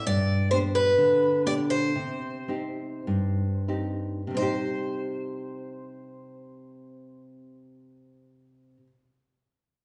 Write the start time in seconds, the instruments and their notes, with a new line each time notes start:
0.07 nylon-string guitar G2, twelve-string acoustic guitar D5
0.51 nylon-string guitar B3 D4 G4, twelve-string acoustic guitar C5
0.75 twelve-string acoustic guitar B4
0.98 nylon-string guitar D3
1.46 nylon-string guitar B3 D4 G4, twelve-string acoustic guitar D5
1.70 twelve-string acoustic guitar C5
1.95 nylon-string guitar C3
2.48 nylon-string guitar C4 D#4 G4
3.07 nylon-string guitar G2
3.68 nylon-string guitar C4 D#4 G4
4.27 nylon-string guitar C3 G3
4.34 nylon-string guitar C4 D#4, twelve-string acoustic guitar C5
4.42 nylon-string guitar G4